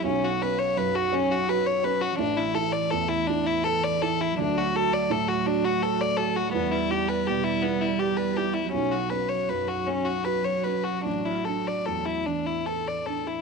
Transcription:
<<
  \new Staff \with { instrumentName = "Violin" } { \time 6/8 \key a \mixolydian \tempo 4. = 55 cis'16 fis'16 b'16 cis''16 b'16 fis'16 cis'16 fis'16 b'16 cis''16 b'16 fis'16 | d'16 e'16 a'16 d''16 a'16 e'16 d'16 e'16 a'16 d''16 a'16 e'16 | d'16 fis'16 a'16 d''16 a'16 fis'16 d'16 fis'16 a'16 d''16 a'16 fis'16 | b16 e'16 g'16 b'16 g'16 e'16 b16 e'16 g'16 b'16 g'16 e'16 |
cis'16 fis'16 b'16 cis''16 b'16 fis'16 cis'16 fis'16 b'16 cis''16 b'16 fis'16 | d'16 e'16 a'16 d''16 a'16 e'16 d'16 e'16 a'16 d''16 a'16 e'16 | }
  \new Staff \with { instrumentName = "Felt piano" } { \time 6/8 \key a \mixolydian b,,8 cis'8 fis,8 cis'8 fis'8 cis'8 | a,,8 e'8 e,8 e'8 a'8 e'8 | d,8 fis'8 a,8 fis'8 a'8 fis'8 | e,8 e'8 b,8 e'8 g'8 e'8 |
b,,8 cis'8 fis,8 cis'8 fis'8 cis'8 | a,,8 d'8 e,8 d'8 a'8 d'8 | }
  \new Staff \with { instrumentName = "Cello" } { \clef bass \time 6/8 \key a \mixolydian fis2. | e2. | fis2. | g2. |
fis2.~ | fis4. e4 r8 | }
>>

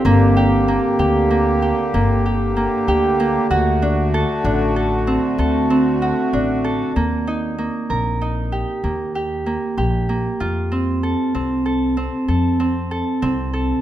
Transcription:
<<
  \new Staff \with { instrumentName = "Harp" } { \time 11/8 \key ees \lydian \tempo 4 = 96 bes8 g'8 bes8 g'8 bes8 g'8 bes8 g'8 bes8 g'8 bes8 | fis'8 d'8 a'8 d'8 a'8 c'8 a'8 c'8 fis'8 d'8 a'8 | bes8 ees'8 bes8 bes'8 ees'8 g'8 bes8 g'8 bes8 g'8 bes8 | f'8 c'8 a'8 c'8 a'8 c'8 a'8 c'8 a'8 c'8 a'8 | }
  \new Staff \with { instrumentName = "Harmonium" } { \time 11/8 \key ees \lydian <bes g'>1~ <bes g'>4. | <a fis'>1~ <a fis'>4. | r1 r4. | r1 r4. | }
  \new Staff \with { instrumentName = "Harmonium" } { \clef bass \time 11/8 \key ees \lydian d1~ d4.~ | d1~ d4. | r1 r4. | r1 r4. | }
  \new Staff \with { instrumentName = "Upright bass" } { \clef bass \time 11/8 \key ees \lydian g,,4. d,4. g,,4. d,4 | d,4. a,,4. d,4. a,,4 | ees,4. bes,,4. ees,4. bes,,4 | f,4. c,4. f,4. c,4 | }
>>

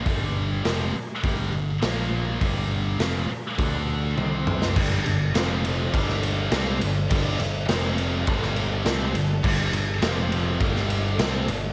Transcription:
<<
  \new Staff \with { instrumentName = "Tonewheel organ" } { \time 4/4 \key f \lydian \tempo 4 = 102 r1 | r1 | <g d' a'>4 <f c' g'>4 <g d' a'>2~ | <g d' a'>4 <f c' g'>4 <g d' a'>2~ |
<g d' a'>4 <f c' g'>4 <g d' a'>2 | }
  \new Staff \with { instrumentName = "Distorted electric guitar" } { \clef bass \time 4/4 \key f \lydian <g, d g>4 <f, c f>8 r8 <g, d g>8 <g, d>8 <bes, f bes>4 | <g, d g>4 <f, c f>8 r8 <d a d'>4 <c g c'>4 | <g, d g>8 <g, d>8 <f, c f>4 <g, d g>4 <c g c'>8 <g, d>8 | <g, d g>8 <g, d>8 <f, c f>4 <g, d g>4 <c g c'>8 <g, d>8 |
<g, d g>8 <g, d>8 <f, c f>4 <g, d g>4 <c g c'>8 <g, d>8 | }
  \new Staff \with { instrumentName = "Overdriven electric guitar" } { \clef bass \time 4/4 \key f \lydian <g, d g>4 <f, c f>8 r8 <g, d g>8 <g, d>8 <bes, f bes>4 | <g, d g>4 <f, c f>8 r8 <d a d'>4 <c g c'>4 | <g, d g>8 <g, d>8 <f, c f>4 <g, d g>4 <c g c'>8 <g, d>8 | <g, d g>8 <g, d>8 <f, c f>4 <g, d g>4 <c g c'>8 <g, d>8 |
<g, d g>8 <g, d>8 <f, c f>4 <g, d g>4 <c g c'>8 <g, d>8 | }
  \new Staff \with { instrumentName = "Picked electric bass" } { \clef bass \time 4/4 \key f \lydian g,,4 f,,8 r8 g,,8 g,,8 bes,,4 | g,,4 f,,8 r8 d,4 c,4 | g,,8 g,,8 f,,4 g,,4 c,8 g,,8 | g,,8 g,,8 f,,4 g,,4 c,8 g,,8 |
g,,8 g,,8 f,,4 g,,4 c,8 g,,8 | }
  \new DrumStaff \with { instrumentName = "Drums" } \drummode { \time 4/4 <hho bd>4 <hho sn>4 <hho bd>4 <hho sn>4 | <hho bd>4 <hho sn>4 <hho bd>4 tommh8 toml16 sn16 | <cymc bd>8 cymr8 <cymr sn>8 cymr8 <bd cymr>16 sn16 cymr8 <cymr sn>8 cymr8 | <bd cymr>8 cymr8 <cymr sn>8 cymr8 <bd cymr>16 sn16 cymr8 <cymr sn>8 cymr8 |
<cymc bd>8 cymr8 <cymr sn>8 cymr8 <bd cymr>16 sn16 cymr8 <cymr sn>8 cymr8 | }
>>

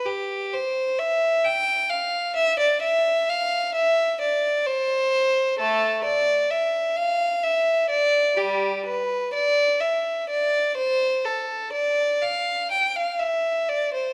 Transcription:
\new Staff \with { instrumentName = "Violin" } { \time 3/4 \key e \phrygian \tempo 4 = 64 g'8 c''8 e''8 g''8 f''8 e''16 d''16 | e''8 f''8 e''8 d''8 c''4 | <a a'>8 d''8 e''8 f''8 e''8 d''8 | <g g'>8 b'8 d''8 e''8 d''8 c''8 |
a'8 d''8 f''8 g''16 f''16 e''8 d''16 c''16 | }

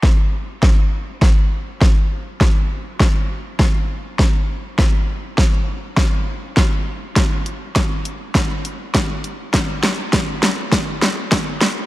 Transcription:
\new DrumStaff \with { instrumentName = "Drums" } \drummode { \time 4/4 \tempo 4 = 101 <bd sn>4 <bd sn>4 <bd sn>4 <bd sn>4 | <bd sn>4 <bd sn>4 <bd sn>4 <bd sn>4 | <bd sn>4 <bd sn>4 <bd sn>4 <bd sn>4 | <hh bd sn>8 hh8 <hh bd sn>8 hh8 <hh bd sn>8 hh8 <hh bd sn>8 hh8 |
<hh bd sn>8 <hh sn>8 <hh bd sn>8 <hh sn>8 <hh bd sn>8 <hh sn>8 <hh bd sn>8 <hh sn>8 | }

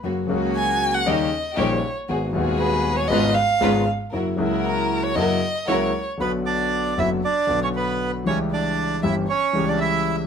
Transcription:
<<
  \new Staff \with { instrumentName = "Violin" } { \time 4/4 \key fis \mixolydian \tempo 4 = 117 r4 gis''8. fis''16 dis''4 cis''8. r16 | r4 b'8. cis''16 dis''8 eis''4 r8 | r4 ais'8. cis''16 dis''4 cis''8. r16 | \key b \minor b'8 d''4 e''8 d''8. cis''16 b'8. r16 |
cis''8 d''4 e''8 cis''8. d''16 e''8. r16 | }
  \new Staff \with { instrumentName = "Bandoneon" } { \time 4/4 \key fis \mixolydian r1 | r1 | r1 | \key b \minor <b b'>8 <d' d''>4 <e' e''>8 <d' d''>8. <cis' cis''>16 <b b'>8. r16 |
<cis' cis''>8 <d' d''>4 <e' e''>8 <cis' cis''>8. <d' d''>16 <e' e''>8. r16 | }
  \new Staff \with { instrumentName = "String section" } { \time 4/4 \key fis \mixolydian <ais cis' fis'>8 <ais cis' fis'>4. <cis' dis' g'>8 r8 <cis' dis' g'>8 r8 | <b fis' gis'>8 <b fis' gis'>4. <gis cis' eis' b'>8 r8 <gis cis' eis' b'>8 r8 | <e' fis' ais'>8 <e' fis' ais'>4. <e' fis' ais'>8 r8 <e' fis' ais'>8 r8 | \key b \minor r1 |
r1 | }
  \new Staff \with { instrumentName = "Grand piano" } { \clef bass \time 4/4 \key fis \mixolydian <fis, cis fis ais fis'>8 <cis, cis fis ais fis'>4. <dis, cis dis g ais dis'>8 r8 <ais,, ais, cis g ais dis'>8 r8 | <gis,, gis, dis gis b fis'>8 <dis,, dis, dis gis b fis'>4. <gis,, gis, cis gis b eis'>8 r8 <gis,, gis, cis gis b eis'>8 r8 | <fis, cis fis ais e'>8 <cis, cis fis ais e'>4. <fis, cis fis ais e'>8 r8 <cis, cis fis ais e'>8 r8 | \key b \minor <b,, b, d fis b fis'>4. <fis,, fis, d fis b fis'>8 r8 <b,, b, d fis b fis'>4. |
<cis, e g e' g'>4. <g,, g, e g cis' g'>8 r8 <cis, cis e g cis' g'>4. | }
>>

